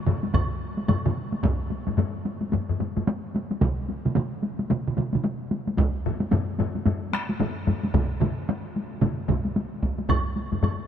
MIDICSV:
0, 0, Header, 1, 3, 480
1, 0, Start_track
1, 0, Tempo, 544465
1, 1270, Time_signature, 4, 2, 24, 8
1, 4625, Tempo, 538117
1, 9643, End_track
2, 0, Start_track
2, 0, Title_t, "Taiko and cinematic ensemble drums"
2, 58, Note_on_c, 9, 47, 93
2, 65, Note_on_c, 9, 45, 96
2, 146, Note_off_c, 9, 47, 0
2, 153, Note_off_c, 9, 45, 0
2, 203, Note_on_c, 9, 48, 57
2, 291, Note_off_c, 9, 48, 0
2, 299, Note_on_c, 9, 48, 69
2, 302, Note_on_c, 9, 47, 95
2, 304, Note_on_c, 9, 41, 94
2, 305, Note_on_c, 9, 45, 97
2, 387, Note_off_c, 9, 48, 0
2, 390, Note_off_c, 9, 47, 0
2, 392, Note_off_c, 9, 41, 0
2, 393, Note_off_c, 9, 45, 0
2, 681, Note_on_c, 9, 48, 53
2, 769, Note_off_c, 9, 48, 0
2, 779, Note_on_c, 9, 47, 93
2, 779, Note_on_c, 9, 48, 69
2, 786, Note_on_c, 9, 45, 93
2, 867, Note_off_c, 9, 47, 0
2, 867, Note_off_c, 9, 48, 0
2, 874, Note_off_c, 9, 45, 0
2, 930, Note_on_c, 9, 45, 85
2, 934, Note_on_c, 9, 47, 91
2, 1018, Note_off_c, 9, 45, 0
2, 1022, Note_off_c, 9, 47, 0
2, 1166, Note_on_c, 9, 48, 55
2, 1254, Note_off_c, 9, 48, 0
2, 1263, Note_on_c, 9, 45, 93
2, 1265, Note_on_c, 9, 48, 64
2, 1266, Note_on_c, 9, 41, 112
2, 1351, Note_off_c, 9, 45, 0
2, 1353, Note_off_c, 9, 48, 0
2, 1354, Note_off_c, 9, 41, 0
2, 1502, Note_on_c, 9, 48, 53
2, 1590, Note_off_c, 9, 48, 0
2, 1648, Note_on_c, 9, 48, 53
2, 1655, Note_on_c, 9, 45, 70
2, 1736, Note_off_c, 9, 48, 0
2, 1743, Note_off_c, 9, 45, 0
2, 1743, Note_on_c, 9, 48, 68
2, 1746, Note_on_c, 9, 45, 97
2, 1831, Note_off_c, 9, 48, 0
2, 1835, Note_off_c, 9, 45, 0
2, 1985, Note_on_c, 9, 48, 58
2, 2073, Note_off_c, 9, 48, 0
2, 2127, Note_on_c, 9, 48, 48
2, 2215, Note_off_c, 9, 48, 0
2, 2222, Note_on_c, 9, 48, 69
2, 2232, Note_on_c, 9, 45, 69
2, 2310, Note_off_c, 9, 48, 0
2, 2320, Note_off_c, 9, 45, 0
2, 2375, Note_on_c, 9, 45, 69
2, 2463, Note_off_c, 9, 45, 0
2, 2468, Note_on_c, 9, 48, 58
2, 2470, Note_on_c, 9, 45, 63
2, 2556, Note_off_c, 9, 48, 0
2, 2558, Note_off_c, 9, 45, 0
2, 2614, Note_on_c, 9, 48, 55
2, 2616, Note_on_c, 9, 45, 69
2, 2703, Note_off_c, 9, 48, 0
2, 2704, Note_off_c, 9, 45, 0
2, 2711, Note_on_c, 9, 48, 75
2, 2799, Note_off_c, 9, 48, 0
2, 2950, Note_on_c, 9, 48, 57
2, 3038, Note_off_c, 9, 48, 0
2, 3091, Note_on_c, 9, 48, 54
2, 3180, Note_off_c, 9, 48, 0
2, 3185, Note_on_c, 9, 48, 67
2, 3188, Note_on_c, 9, 41, 99
2, 3188, Note_on_c, 9, 47, 98
2, 3273, Note_off_c, 9, 48, 0
2, 3276, Note_off_c, 9, 41, 0
2, 3277, Note_off_c, 9, 47, 0
2, 3426, Note_on_c, 9, 48, 51
2, 3514, Note_off_c, 9, 48, 0
2, 3573, Note_on_c, 9, 48, 57
2, 3578, Note_on_c, 9, 47, 75
2, 3661, Note_off_c, 9, 48, 0
2, 3666, Note_off_c, 9, 47, 0
2, 3666, Note_on_c, 9, 48, 73
2, 3674, Note_on_c, 9, 47, 89
2, 3754, Note_off_c, 9, 48, 0
2, 3762, Note_off_c, 9, 47, 0
2, 3902, Note_on_c, 9, 48, 53
2, 3990, Note_off_c, 9, 48, 0
2, 4047, Note_on_c, 9, 48, 51
2, 4136, Note_off_c, 9, 48, 0
2, 4143, Note_on_c, 9, 48, 73
2, 4155, Note_on_c, 9, 47, 65
2, 4232, Note_off_c, 9, 48, 0
2, 4243, Note_off_c, 9, 47, 0
2, 4298, Note_on_c, 9, 47, 67
2, 4379, Note_on_c, 9, 48, 57
2, 4386, Note_off_c, 9, 47, 0
2, 4390, Note_on_c, 9, 47, 74
2, 4467, Note_off_c, 9, 48, 0
2, 4478, Note_off_c, 9, 47, 0
2, 4520, Note_on_c, 9, 48, 56
2, 4540, Note_on_c, 9, 47, 73
2, 4609, Note_off_c, 9, 48, 0
2, 4616, Note_on_c, 9, 48, 65
2, 4628, Note_off_c, 9, 47, 0
2, 4705, Note_off_c, 9, 48, 0
2, 4861, Note_on_c, 9, 48, 55
2, 4950, Note_off_c, 9, 48, 0
2, 5006, Note_on_c, 9, 48, 52
2, 5095, Note_off_c, 9, 48, 0
2, 5095, Note_on_c, 9, 48, 65
2, 5104, Note_on_c, 9, 41, 116
2, 5185, Note_off_c, 9, 48, 0
2, 5193, Note_off_c, 9, 41, 0
2, 5351, Note_on_c, 9, 45, 100
2, 5440, Note_off_c, 9, 45, 0
2, 5479, Note_on_c, 9, 48, 55
2, 5568, Note_off_c, 9, 48, 0
2, 5576, Note_on_c, 9, 48, 72
2, 5590, Note_on_c, 9, 45, 99
2, 5666, Note_off_c, 9, 48, 0
2, 5679, Note_off_c, 9, 45, 0
2, 5819, Note_on_c, 9, 48, 54
2, 5831, Note_on_c, 9, 45, 96
2, 5908, Note_off_c, 9, 48, 0
2, 5920, Note_off_c, 9, 45, 0
2, 5967, Note_on_c, 9, 48, 48
2, 6056, Note_off_c, 9, 48, 0
2, 6064, Note_on_c, 9, 48, 68
2, 6068, Note_on_c, 9, 45, 95
2, 6153, Note_off_c, 9, 48, 0
2, 6157, Note_off_c, 9, 45, 0
2, 6304, Note_on_c, 9, 48, 55
2, 6309, Note_on_c, 9, 37, 65
2, 6393, Note_off_c, 9, 48, 0
2, 6398, Note_off_c, 9, 37, 0
2, 6450, Note_on_c, 9, 48, 57
2, 6539, Note_off_c, 9, 48, 0
2, 6544, Note_on_c, 9, 48, 69
2, 6549, Note_on_c, 9, 45, 92
2, 6633, Note_off_c, 9, 48, 0
2, 6638, Note_off_c, 9, 45, 0
2, 6786, Note_on_c, 9, 48, 55
2, 6788, Note_on_c, 9, 45, 94
2, 6875, Note_off_c, 9, 48, 0
2, 6877, Note_off_c, 9, 45, 0
2, 6933, Note_on_c, 9, 48, 56
2, 7022, Note_off_c, 9, 48, 0
2, 7028, Note_on_c, 9, 41, 110
2, 7029, Note_on_c, 9, 45, 98
2, 7033, Note_on_c, 9, 48, 67
2, 7034, Note_on_c, 9, 47, 92
2, 7118, Note_off_c, 9, 41, 0
2, 7118, Note_off_c, 9, 45, 0
2, 7122, Note_off_c, 9, 48, 0
2, 7123, Note_off_c, 9, 47, 0
2, 7269, Note_on_c, 9, 45, 96
2, 7273, Note_on_c, 9, 47, 102
2, 7275, Note_on_c, 9, 48, 54
2, 7358, Note_off_c, 9, 45, 0
2, 7363, Note_off_c, 9, 47, 0
2, 7365, Note_off_c, 9, 48, 0
2, 7518, Note_on_c, 9, 48, 68
2, 7607, Note_off_c, 9, 48, 0
2, 7760, Note_on_c, 9, 48, 53
2, 7849, Note_off_c, 9, 48, 0
2, 7986, Note_on_c, 9, 47, 91
2, 7991, Note_on_c, 9, 45, 95
2, 7992, Note_on_c, 9, 48, 66
2, 8075, Note_off_c, 9, 47, 0
2, 8080, Note_off_c, 9, 45, 0
2, 8081, Note_off_c, 9, 48, 0
2, 8225, Note_on_c, 9, 45, 90
2, 8231, Note_on_c, 9, 41, 75
2, 8231, Note_on_c, 9, 47, 94
2, 8232, Note_on_c, 9, 48, 47
2, 8314, Note_off_c, 9, 45, 0
2, 8321, Note_off_c, 9, 41, 0
2, 8321, Note_off_c, 9, 47, 0
2, 8321, Note_off_c, 9, 48, 0
2, 8374, Note_on_c, 9, 48, 46
2, 8463, Note_off_c, 9, 48, 0
2, 8473, Note_on_c, 9, 48, 59
2, 8563, Note_off_c, 9, 48, 0
2, 8710, Note_on_c, 9, 41, 71
2, 8712, Note_on_c, 9, 48, 48
2, 8799, Note_off_c, 9, 41, 0
2, 8801, Note_off_c, 9, 48, 0
2, 8849, Note_on_c, 9, 48, 46
2, 8938, Note_off_c, 9, 48, 0
2, 8943, Note_on_c, 9, 48, 55
2, 8944, Note_on_c, 9, 45, 91
2, 8948, Note_on_c, 9, 41, 108
2, 9033, Note_off_c, 9, 45, 0
2, 9033, Note_off_c, 9, 48, 0
2, 9037, Note_off_c, 9, 41, 0
2, 9186, Note_on_c, 9, 48, 45
2, 9275, Note_off_c, 9, 48, 0
2, 9328, Note_on_c, 9, 45, 66
2, 9328, Note_on_c, 9, 48, 45
2, 9417, Note_off_c, 9, 48, 0
2, 9418, Note_off_c, 9, 45, 0
2, 9426, Note_on_c, 9, 45, 97
2, 9429, Note_on_c, 9, 48, 59
2, 9515, Note_off_c, 9, 45, 0
2, 9518, Note_off_c, 9, 48, 0
2, 9643, End_track
3, 0, Start_track
3, 0, Title_t, "Drums"
3, 304, Note_on_c, 9, 76, 48
3, 392, Note_off_c, 9, 76, 0
3, 780, Note_on_c, 9, 76, 42
3, 869, Note_off_c, 9, 76, 0
3, 8952, Note_on_c, 9, 76, 55
3, 9041, Note_off_c, 9, 76, 0
3, 9434, Note_on_c, 9, 76, 41
3, 9523, Note_off_c, 9, 76, 0
3, 9643, End_track
0, 0, End_of_file